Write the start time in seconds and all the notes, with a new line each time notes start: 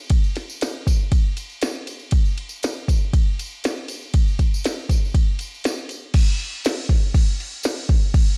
0.10 kick, ride, tambourine
0.24 tambourine
0.36 snare, ride, tambourine
0.50 tambourine
0.61 snare, ride, tambourine
0.87 kick, ride, tambourine
1.12 kick, ride, tambourine
1.37 ride, tambourine
1.50 tambourine
1.61 snare, ride, tambourine
1.75 tambourine
1.87 ride, tambourine
1.99 tambourine
2.11 kick, ride, tambourine
2.25 tambourine
2.38 ride
2.49 tambourine
2.63 snare, ride, tambourine
2.88 kick, ride, tambourine
3.13 kick, ride, tambourine
3.39 ride, tambourine
3.51 tambourine
3.64 snare, ride, tambourine
3.76 tambourine
3.88 ride, tambourine
4.02 tambourine
4.14 kick, ride, tambourine
4.28 tambourine
4.39 kick, ride, tambourine
4.54 tambourine
4.64 snare, ride, tambourine
4.79 tambourine
4.89 kick, ride, tambourine
5.05 tambourine
5.14 kick, ride, tambourine
5.39 ride, tambourine
5.54 tambourine
5.64 snare, ride, tambourine
5.79 tambourine
5.89 ride, tambourine
6.14 kick, crash
6.40 crash
6.65 snare, tambourine, crash
6.89 kick, crash
7.14 kick, crash
7.40 crash
7.63 snare, tambourine, crash
7.89 kick, crash
8.14 kick, crash